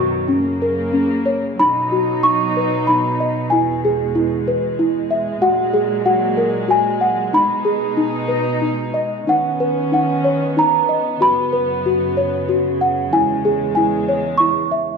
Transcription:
0.00 1.57 F#2 medium
0.00 0.28 B2 medium
0.00 0.28 D#3 medium
0.00 0.28 F#3 medium
0.00 0.29 D#4 medium
0.00 0.29 F#4 medium
0.00 1.22 C#6 medium
0.28 1.58 C#3 medium
0.28 1.58 A#3 medium
0.28 0.92 C#4 medium
0.62 1.59 A#4 medium
0.93 1.58 C#4 medium
1.26 1.58 C#5 medium
1.59 5.39 B2 medium
1.59 3.50 F#3 medium
1.59 3.50 D#4 medium
1.59 2.23 D#4 medium
1.59 2.26 B5 medium
1.92 3.20 F#4 medium
2.23 2.88 D#4 medium
2.23 2.90 C#6 medium
2.57 3.52 B4 medium
2.87 3.52 D#4 medium
2.87 3.53 B5 medium
3.20 3.52 D#5 medium
3.50 5.41 E2 medium
3.50 9.24 G#3 medium
3.50 4.14 E4 medium
3.50 4.74 G#5 medium
3.85 5.11 G#4 medium
4.15 4.78 E4 medium
4.48 5.42 B4 medium
4.79 5.42 E4 medium
5.11 5.42 E5 medium
5.42 7.32 A#2 medium
5.42 7.32 F#3 medium
5.42 6.04 F#4 medium
5.42 6.04 F#5 medium
5.73 7.01 G#4 medium
6.06 6.67 F#4 medium
6.06 6.71 F#5 medium
6.37 7.33 A#4 medium
6.68 7.32 F#4 medium
6.68 7.30 G#5 medium
7.01 7.33 F#5 medium
7.32 9.25 B2 medium
7.32 9.25 D#4 medium
7.32 7.96 D#4 medium
7.32 8.59 B5 medium
7.65 8.95 G#4 medium
7.97 8.60 D#4 medium
8.28 9.27 B4 medium
8.62 9.26 D#4 medium
8.94 9.27 D#5 medium
9.27 11.19 D#3 medium
9.27 13.09 B3 medium
9.27 11.20 C#4 medium
9.27 9.91 D#4 medium
9.27 9.92 F#5 medium
9.60 10.89 B4 medium
9.92 10.56 D#4 medium
9.92 10.60 F#5 medium
10.24 11.21 C#5 medium
10.57 11.21 D#4 medium
10.57 11.24 A#5 medium
10.89 11.21 D#5 medium
11.21 13.11 F#2 medium
11.21 14.97 C#3 medium
11.21 11.85 F#4 medium
11.21 12.77 B5 medium
11.53 12.80 B4 medium
11.86 12.47 F#4 medium
12.17 13.12 C#5 medium
12.49 13.12 F#4 medium
12.81 13.13 F#5 medium
13.13 14.97 E2 medium
13.13 14.97 G#3 medium
13.13 13.76 E4 medium
13.13 13.74 G#5 medium
13.45 14.71 G#4 medium
13.75 14.39 E4 medium
13.75 14.41 G#5 medium
14.09 14.97 C#5 medium
14.38 14.97 E4 medium
14.38 14.97 C#6 medium
14.71 14.97 E5 medium

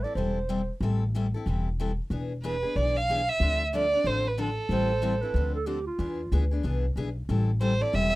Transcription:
0.03 0.17 C4 soft
0.03 0.17 E4 soft
0.03 0.16 A4 soft
0.03 0.15 D5 medium
0.15 0.68 E1 medium
0.15 0.37 E3 medium
0.15 0.38 G3 medium
0.15 0.38 C4 medium
0.15 0.38 E4 medium
0.15 0.38 A4 medium
0.15 0.77 C5 medium
0.49 0.60 E3 medium
0.49 0.60 G3 medium
0.49 0.61 C4 medium
0.49 0.60 E4 medium
0.49 0.60 A4 medium
0.81 1.33 A1 medium
0.81 1.02 E3 medium
0.81 1.03 G3 medium
0.81 1.03 C4 medium
0.81 1.03 E4 medium
0.81 1.03 A4 medium
1.15 1.25 E3 medium
1.15 1.26 G3 medium
1.15 1.26 C4 medium
1.15 1.26 E4 medium
1.15 1.26 A4 medium
1.34 1.47 C4 soft
1.34 1.47 E4 soft
1.34 1.46 A4 medium
1.46 1.98 E1 medium
1.46 1.67 E3 medium
1.46 1.67 G3 medium
1.46 1.68 C4 medium
1.46 1.68 E4 medium
1.46 1.68 A4 medium
1.80 1.90 E3 medium
1.80 1.90 G3 medium
1.80 1.91 C4 medium
1.80 1.91 E4 medium
1.80 1.91 A4 medium
2.10 2.62 E1 medium
2.10 2.31 E3 medium
2.10 2.32 B3 medium
2.10 2.32 D4 medium
2.10 2.32 G#4 medium
2.44 2.55 E3 medium
2.44 2.55 B3 medium
2.44 2.55 D4 medium
2.44 2.55 G#4 medium
2.44 2.78 B4 medium
2.63 2.76 B3 soft
2.63 2.76 D4 soft
2.63 2.75 G#4 soft
2.76 3.28 B1 medium
2.76 2.97 E3 medium
2.76 2.97 B3 medium
2.76 2.97 D4 medium
2.76 2.98 G#4 medium
2.76 2.99 D5 medium
2.97 3.31 F5 medium
3.09 3.20 E3 medium
3.09 3.20 B3 medium
3.09 3.20 D4 medium
3.09 3.21 G#4 medium
3.29 3.61 E5 medium
3.40 3.92 D2 medium
3.40 3.61 D3 medium
3.40 3.62 F3 medium
3.40 3.62 C4 medium
3.40 3.62 D4 medium
3.40 3.62 A4 medium
3.73 3.84 D3 medium
3.73 3.84 F3 medium
3.73 3.85 C4 medium
3.73 3.85 D4 medium
3.73 3.85 A4 medium
3.73 4.09 D5 medium
3.93 4.05 C4 soft
3.93 4.05 D4 soft
3.93 4.05 A4 soft
4.04 4.57 A1 medium
4.04 4.26 D3 medium
4.04 4.26 F3 medium
4.04 4.26 C4 medium
4.04 4.26 D4 medium
4.04 4.26 A4 medium
4.04 4.29 C5 medium
4.28 4.39 B4 medium
4.38 4.49 D3 medium
4.38 4.49 F3 medium
4.38 4.49 C4 medium
4.38 4.49 D4 medium
4.38 4.49 A4 medium
4.42 5.33 A4 medium
4.69 5.21 A1 medium
4.69 4.91 E3 medium
4.69 4.91 G3 medium
4.69 4.91 C4 medium
4.69 4.91 E4 medium
4.69 4.92 A4 medium
4.69 5.23 C5 loud
5.02 5.13 E3 medium
5.02 5.13 G3 medium
5.02 5.14 C4 medium
5.02 5.14 E4 medium
5.02 5.14 A4 medium
5.21 5.35 C4 soft
5.21 5.35 E4 soft
5.21 5.35 A4 soft
5.21 5.54 B4 medium
5.34 5.86 D2 medium
5.34 5.56 D3 medium
5.34 5.56 F3 medium
5.34 5.56 C4 medium
5.34 5.56 D4 medium
5.34 5.56 A4 medium
5.55 5.68 A4 medium
5.66 5.78 D3 medium
5.66 5.78 F3 medium
5.66 5.78 C4 medium
5.66 5.78 D4 medium
5.66 5.86 G4 medium
5.66 5.78 A4 medium
5.87 6.48 F4 medium
5.99 6.25 E2 medium
5.99 6.20 E3 medium
5.99 6.20 B3 medium
5.99 6.20 D4 medium
5.99 6.20 G#4 medium
6.32 6.59 D2 medium
6.32 6.43 E3 medium
6.32 6.43 B3 medium
6.32 6.44 D4 medium
6.32 6.44 G#4 medium
6.51 6.63 B3 soft
6.51 6.63 D4 soft
6.51 6.64 G#4 soft
6.63 6.92 C2 medium
6.63 6.84 E3 medium
6.63 6.85 B3 medium
6.63 6.85 D4 medium
6.63 6.85 G#4 medium
6.96 7.24 B1 medium
6.96 7.08 E3 medium
6.96 7.08 B3 medium
6.96 7.08 D4 medium
6.96 7.08 G#4 medium
7.29 7.81 A1 medium
7.29 7.49 E3 medium
7.29 7.50 G3 medium
7.29 7.50 C4 medium
7.29 7.50 E4 medium
7.29 7.50 A4 medium
7.61 7.72 E3 medium
7.61 7.72 G3 medium
7.61 7.72 C4 medium
7.61 7.73 E4 medium
7.61 7.73 A4 medium
7.61 7.83 C5 medium
7.81 7.93 C4 soft
7.81 7.93 E4 soft
7.81 7.93 A4 soft
7.81 7.96 D5 medium
7.93 8.15 E1 medium
7.93 8.14 E3 medium
7.93 8.14 G3 medium
7.93 8.14 C4 medium
7.93 8.14 E4 medium
7.93 8.14 A4 medium
7.93 8.14 E5 loud

